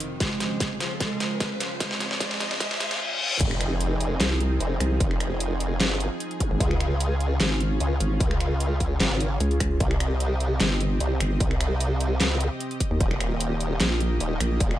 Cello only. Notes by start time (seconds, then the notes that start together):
0.20 G#3
0.81 F3
1.01 G#3
1.60 F3
1.81 G#3
2.21 G#3
2.60 G#3
2.80 G#3